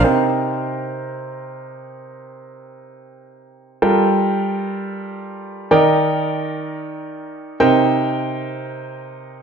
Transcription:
0, 0, Header, 1, 2, 480
1, 0, Start_track
1, 0, Tempo, 500000
1, 9047, End_track
2, 0, Start_track
2, 0, Title_t, "Upright piano"
2, 0, Program_c, 0, 0
2, 40, Note_on_c, 0, 48, 67
2, 40, Note_on_c, 0, 63, 61
2, 40, Note_on_c, 0, 70, 63
2, 40, Note_on_c, 0, 72, 61
2, 40, Note_on_c, 0, 79, 72
2, 3643, Note_off_c, 0, 48, 0
2, 3643, Note_off_c, 0, 63, 0
2, 3643, Note_off_c, 0, 70, 0
2, 3643, Note_off_c, 0, 72, 0
2, 3643, Note_off_c, 0, 79, 0
2, 3668, Note_on_c, 0, 65, 62
2, 3668, Note_on_c, 0, 69, 65
2, 3668, Note_on_c, 0, 79, 76
2, 3669, Note_on_c, 0, 55, 67
2, 3669, Note_on_c, 0, 70, 63
2, 5457, Note_off_c, 0, 55, 0
2, 5457, Note_off_c, 0, 65, 0
2, 5457, Note_off_c, 0, 69, 0
2, 5457, Note_off_c, 0, 70, 0
2, 5457, Note_off_c, 0, 79, 0
2, 5482, Note_on_c, 0, 51, 69
2, 5482, Note_on_c, 0, 63, 61
2, 5482, Note_on_c, 0, 70, 63
2, 5482, Note_on_c, 0, 74, 65
2, 5482, Note_on_c, 0, 79, 76
2, 7271, Note_off_c, 0, 51, 0
2, 7271, Note_off_c, 0, 63, 0
2, 7271, Note_off_c, 0, 70, 0
2, 7271, Note_off_c, 0, 74, 0
2, 7271, Note_off_c, 0, 79, 0
2, 7296, Note_on_c, 0, 48, 69
2, 7296, Note_on_c, 0, 63, 64
2, 7296, Note_on_c, 0, 70, 62
2, 7296, Note_on_c, 0, 72, 63
2, 7296, Note_on_c, 0, 79, 77
2, 9047, Note_off_c, 0, 48, 0
2, 9047, Note_off_c, 0, 63, 0
2, 9047, Note_off_c, 0, 70, 0
2, 9047, Note_off_c, 0, 72, 0
2, 9047, Note_off_c, 0, 79, 0
2, 9047, End_track
0, 0, End_of_file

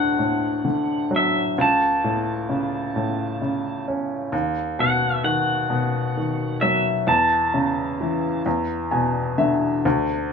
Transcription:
0, 0, Header, 1, 3, 480
1, 0, Start_track
1, 0, Key_signature, 3, "major"
1, 0, Tempo, 918836
1, 824, Time_signature, 6, 3, 24, 8
1, 5395, End_track
2, 0, Start_track
2, 0, Title_t, "Pedal steel guitar"
2, 0, Program_c, 0, 26
2, 0, Note_on_c, 0, 78, 66
2, 571, Note_off_c, 0, 78, 0
2, 606, Note_on_c, 0, 76, 72
2, 842, Note_off_c, 0, 76, 0
2, 843, Note_on_c, 0, 81, 76
2, 2011, Note_off_c, 0, 81, 0
2, 2510, Note_on_c, 0, 78, 57
2, 2727, Note_off_c, 0, 78, 0
2, 2740, Note_on_c, 0, 78, 76
2, 3454, Note_on_c, 0, 76, 76
2, 3478, Note_off_c, 0, 78, 0
2, 3697, Note_on_c, 0, 81, 69
2, 3701, Note_off_c, 0, 76, 0
2, 4397, Note_off_c, 0, 81, 0
2, 5395, End_track
3, 0, Start_track
3, 0, Title_t, "Upright piano"
3, 0, Program_c, 1, 0
3, 0, Control_c, 1, 64, 127
3, 0, Note_on_c, 1, 38, 51
3, 0, Note_on_c, 1, 45, 41
3, 0, Note_on_c, 1, 50, 40
3, 91, Note_off_c, 1, 45, 0
3, 99, Note_on_c, 1, 45, 38
3, 330, Note_off_c, 1, 50, 0
3, 337, Note_on_c, 1, 50, 41
3, 579, Note_on_c, 1, 54, 42
3, 800, Note_off_c, 1, 45, 0
3, 802, Note_off_c, 1, 38, 0
3, 806, Note_off_c, 1, 50, 0
3, 814, Note_off_c, 1, 54, 0
3, 826, Note_on_c, 1, 37, 58
3, 830, Control_c, 1, 64, 0
3, 927, Control_c, 1, 64, 127
3, 1067, Note_on_c, 1, 45, 42
3, 1302, Note_on_c, 1, 49, 43
3, 1537, Note_off_c, 1, 45, 0
3, 1545, Note_on_c, 1, 45, 40
3, 1777, Note_off_c, 1, 49, 0
3, 1785, Note_on_c, 1, 49, 38
3, 2027, Note_on_c, 1, 61, 41
3, 2242, Note_off_c, 1, 37, 0
3, 2242, Note_off_c, 1, 45, 0
3, 2248, Note_off_c, 1, 49, 0
3, 2257, Note_off_c, 1, 61, 0
3, 2259, Note_on_c, 1, 39, 61
3, 2269, Control_c, 1, 64, 0
3, 2362, Control_c, 1, 64, 127
3, 2503, Note_on_c, 1, 47, 48
3, 2738, Note_on_c, 1, 51, 45
3, 2969, Note_off_c, 1, 47, 0
3, 2977, Note_on_c, 1, 47, 45
3, 3217, Note_off_c, 1, 51, 0
3, 3225, Note_on_c, 1, 51, 38
3, 3460, Note_on_c, 1, 54, 47
3, 3672, Note_off_c, 1, 39, 0
3, 3673, Note_off_c, 1, 47, 0
3, 3685, Note_off_c, 1, 51, 0
3, 3690, Note_off_c, 1, 54, 0
3, 3694, Note_on_c, 1, 40, 61
3, 3701, Control_c, 1, 64, 0
3, 3788, Control_c, 1, 64, 127
3, 3938, Note_on_c, 1, 49, 49
3, 4182, Note_on_c, 1, 52, 42
3, 4395, Note_off_c, 1, 40, 0
3, 4404, Note_off_c, 1, 49, 0
3, 4413, Note_off_c, 1, 52, 0
3, 4419, Note_on_c, 1, 40, 57
3, 4424, Control_c, 1, 64, 0
3, 4502, Control_c, 1, 64, 127
3, 4657, Note_on_c, 1, 80, 49
3, 4660, Note_on_c, 1, 47, 44
3, 4882, Note_off_c, 1, 80, 0
3, 4900, Note_on_c, 1, 50, 42
3, 4901, Note_on_c, 1, 76, 53
3, 5123, Note_off_c, 1, 40, 0
3, 5126, Note_off_c, 1, 76, 0
3, 5129, Note_off_c, 1, 47, 0
3, 5135, Note_off_c, 1, 50, 0
3, 5148, Note_on_c, 1, 38, 61
3, 5150, Control_c, 1, 64, 0
3, 5244, Control_c, 1, 64, 127
3, 5395, Note_off_c, 1, 38, 0
3, 5395, End_track
0, 0, End_of_file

